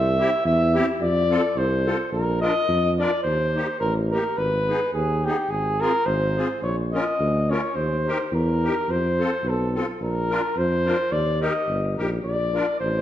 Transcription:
Already playing: C2 E5
0.19 C4 E4 G4
0.45 E2 E5
0.74 C4 E4 G4
1.00 F2 D5
1.30 C4 F4 A4
1.56 C2 C5
1.86 C4 F4 A4
2.12 A#1 A#4
2.41 D4 F4 A#4 D#5
2.68 F2
2.99 D4 F4 A#4 D5
3.23 D#2 C5
3.55 A#3 D#4 G4
3.80 A1 A#4
4.11 A#3 D#4 G4 A#4
4.37 G#1 B4
4.68 B3 D#4 G#4
4.93 D#2 G#4
5.24 B3 D#4 G4 G#4
5.49 G#1 G#4
5.81 C4 F4 G#4 A#4
6.06 G#1 C5
6.37 C4 F4 G#4
6.62 A#1 C#5
6.93 C#4 F4 A#4 D#5
7.19 D2
7.50 C#4 F4 A#4 C#5
7.75 D#2 C5
8.07 D#4 G4 A#4
8.25 C5
8.31 E2 A#4
8.64 D#4 G4 A#4
8.88 F2 C5
9.19 C4 F4 A4
9.44 B1
9.49 A4
9.74 C4 F4 A4
10.00 A#1
10.04 A#4
10.30 D4 F4 A#4
10.56 F2 C5
10.85 D4 F4 A#4
11.11 D#2 D5
11.41 D#4 G4 A#4 D#5
11.67 G1
11.97 A#1 D#4 G4 A#4
12.24 A#1 D5
12.54 D4 F4 A#4
12.80 A1 C5

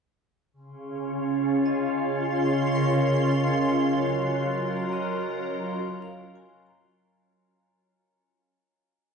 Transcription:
0.53 C#3 C6
0.71 C#4
1.02 F4
1.66 D#5
2.04 C6
2.75 A#4
3.08 C#5
3.40 D#5
3.83 F#3
4.42 A#4
4.93 D#5
6.02 F5
6.35 G#5
6.66 A#5

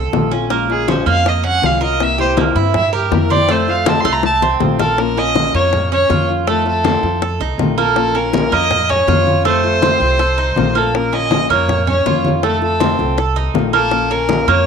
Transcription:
Already playing: A4
0.13 A#1 C3 F3 A3 C4 F4, high bongo, low bongo, high conga
0.31 A3 C4 C#4 F4, high bongo
0.50 F3 G#3 A#3 C#4 F4, high bongo, high conga
0.69 G#3 C#4 F4 G#4, high bongo, high conga
0.88 F3 G#3 C#4 F4 C5, high bongo, high conga
1.06 F2 G#3 A#3 C#4 F4 F5, high bongo, high conga
1.25 D#5, muted nylon-string guitar stroke, high bongo, high conga
1.44 C#4 F#5, high conga
1.62 C2 F3 G#3 C#4 F4, high bongo, low bongo, high conga
1.66 F5
1.81 G#3 C#4 F4 A#4 D#5, high bongo
2.00 C3 E3 A#3 C4 E4 E5, high bongo, high conga
2.18 A#3 C4 E4 G4 C5, high bongo, high conga
2.37 C3 E3 A#3 C4 E4, high bongo, high conga
2.55 G2 A#3 C4 E4, high bongo, high conga
2.74 E5, muted nylon-string guitar stroke, high bongo, high conga, low conga
2.93 G4 A#4, high conga
3.12 F2 C3 E3 A#3 C4 E4 A#4, high bongo, low bongo, high conga
3.30 A#3 C4 E4 D5, high bongo, high conga
3.49 C3 F3 A3 C4 F4 C5, high bongo, high conga
3.67 A3 C4 F4 F5, high bongo, high conga
3.86 C3 F3 A3 C4 F4 A5, high bongo, high conga
4.01 C2 C6
4.05 A3 C4 F4, high bongo, high conga
4.13 A#5
4.23 A5, muted nylon-string guitar stroke, high bongo, high conga
4.42 C4, low bongo, high conga
4.60 A#1 C3 F3 A3 C4 F4, low bongo, high conga
4.79 A3 C4 F4 A4 A#4, low bongo, high conga
4.98 F3 A#3 C#4 F4 A#4, high bongo, high conga
5.16 A#3 C#4 F4 D#5, high bongo, high conga
5.34 F3 A#3 C#4 F4, high bongo, high conga
5.54 F2 A#3 C#4 F4 C#5, high bongo, high conga
5.72 muted nylon-string guitar stroke, high bongo, high conga, low conga
5.92 C#4 C#5, high conga
6.09 F2 F3 A#3 C#4 F4, high bongo, low bongo, high conga
6.29 A#3 C#4 F4, high bongo
6.47 C3 D#3 A3 C4 F4 A4, high bongo, high conga
6.66 A3 C4 F4 A4, high bongo, high conga
6.84 C3 D#3 A3 C4 F4, high bongo, high conga
7.03 F2 A3 C4 F4, high bongo, high conga
7.21 A4, muted nylon-string guitar stroke, high bongo, high conga
7.40 C2 D#4, high conga
7.58 A#1 C3 D#3 A3 C4 F4, high bongo, low bongo, high conga
7.77 A3 A#3 C4 F4 A4, high bongo
7.96 F3 A#3 C#4 F4, high bongo
8.14 A#3 C#4 F4 A#4, high bongo, high conga
8.33 F3 A#3 C#4 F4, high bongo, high conga
8.52 F2 A#3 C#4 F4 D#5, high bongo, high conga
8.70 muted nylon-string guitar stroke, high bongo, high conga, low conga
8.89 C#4 C#5, high conga, low conga
9.08 F2 F3 A#3 C#4 F4, high bongo, low bongo, high conga
9.26 A#3 C#4 F4, high bongo, high conga
9.45 C3 D#3 A3 C4 F4 C5, high bongo, high conga
9.64 A3 C4 F4, high bongo, high conga
9.82 C3 D#3 A3 C4 F4, high bongo, high conga
10.00 C2 A3 F4, high bongo, high conga
10.19 A4, muted nylon-string guitar stroke, high bongo, high conga
10.38 D#4, high conga
10.56 A#1 C3 D#3 A3 C4 F4, high bongo, low bongo, high conga
10.75 A3 A#3 C4 F4 A4, high bongo
10.94 F3 A#3 C#4 F4 A#4, high bongo, high conga
11.12 A#3 C#4 F4 D#5, high bongo, high conga
11.31 F3 A#3 C#4 F4, high bongo, high conga
11.50 F2 A#3 C#4 F4 C#5, high bongo, high conga
11.69 muted nylon-string guitar stroke, high bongo, high conga, low conga
11.87 C#4 C#5, high conga, low conga
12.06 F2 F3 A#3 C#4 F4, high bongo, low bongo, high conga
12.25 A#3 C#4 F4, high bongo, high conga
12.43 C3 D#3 A3 C4 F4 A4, high bongo, high conga
12.62 A3 C4 F4 A4, high bongo, high conga
12.80 C3 D#3 A3 C4 F4, high bongo, high conga
12.99 C2 A3 C4 F4, high bongo, high conga
13.17 A4, muted nylon-string guitar stroke, high bongo, high conga
13.36 D#4, high conga
13.54 A#1 C3 D#3 A3 C4 F4, high bongo, low bongo, high conga
13.73 A#3 C4 F4 A4, high bongo
13.91 F3 A#3 C#4 F4, high bongo, high conga
14.10 A#3 C#4 F4 A#4, high bongo, high conga
14.29 F3 A#3 C#4 F4, high bongo, high conga
14.47 F2 A#3 C#4 F4 C#5, high bongo, high conga

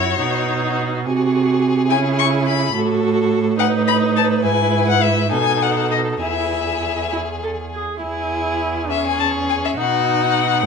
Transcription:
Already playing: F#2 E4 F#4 C#5
0.21 B2 D#4
1.06 C3 F#4 G#4
1.90 C#3 E4 G#5
2.19 C#6
2.47 B5
2.75 A2 F#4 A4
3.59 D#4 B4 F#5
3.88 B5
4.17 A5
4.44 G#2 E4 G#5
4.89 F#5
5.03 E5
5.32 B2 D#4 A4 G#5
5.62 F#5
5.91 D#5
6.21 E2 E4 G#4 E5
7.12 E4
7.43 A4
7.73 G#4
8.03 E2 E4 G#4
8.90 C#4 G#4 E5
9.07 G#5
9.20 A5
9.49 G#5
9.65 E5
9.78 B2 D#4 F#4 F#5

